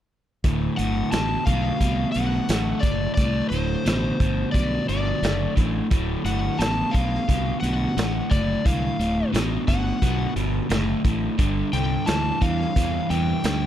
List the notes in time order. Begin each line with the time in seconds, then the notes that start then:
0.44 D1 D2 A2, kick, closed hi-hat
0.77 G1 D2 A2 F#5, closed hi-hat
1.12 A1 D2 B2 A5, snare, closed hi-hat
1.46 B1 D2 B2 F5, kick, closed hi-hat
1.81 C2 D2 B2, kick, closed hi-hat
2.12 B1 D2 F#5, closed hi-hat
2.16 B2
2.49 A1 D2 A2, snare, closed hi-hat
2.80 F#1 D2 A2 D5, kick, closed hi-hat
3.14 C2 D2 D5, kick, closed hi-hat
3.19 A2
3.49 D1 D2 A2 C5, closed hi-hat
3.85 A1 D2 B2, snare, closed hi-hat
4.20 G1 D2 B2, kick, closed hi-hat
4.52 B1 D2 B2 D5, kick, closed hi-hat
4.88 G1 D2 B2 D5, closed hi-hat
5.22 F#1 D2 A2, snare, closed hi-hat
5.56 A1 D2 A2, kick, closed hi-hat
5.91 D1 D2 A2, kick, closed hi-hat
6.24 G1 D2 A2 F#5, closed hi-hat
6.59 A1 D2 B2 A5, snare, closed hi-hat
6.91 B1 D2 B2 F5, kick, closed hi-hat
7.14 snare
7.28 C2 D2 B2, kick, closed hi-hat
7.60 B1 D2 B2 F#5, closed hi-hat
7.97 A1 D2 A2, snare, closed hi-hat
8.30 F#1 D2 A2 D5, kick, closed hi-hat
8.64 C2 D2 A2 F5, kick, closed hi-hat
8.99 D1 D2 A2, closed hi-hat
9.33 A1 D2 B2, snare, closed hi-hat
9.67 G1 D2 B2 F#5, kick, closed hi-hat
10.02 B1 D2 B2, kick, closed hi-hat
10.36 G1 D2 B2, closed hi-hat
10.69 F#1 D2 A2, snare, closed hi-hat
11.04 A1 D2 A2, kick, closed hi-hat
11.38 G1 G2 D3, kick, closed hi-hat
11.73 C2 G2 D3 G5, closed hi-hat
12.06 D2 G2 E3 A5, snare, closed hi-hat
12.41 E2 G2 E3 F5, kick, closed hi-hat
12.61 snare
12.76 E2 G2 E3, kick, closed hi-hat
13.10 E2 G2 E3 G5, closed hi-hat
13.44 D2 G2 D3, snare, closed hi-hat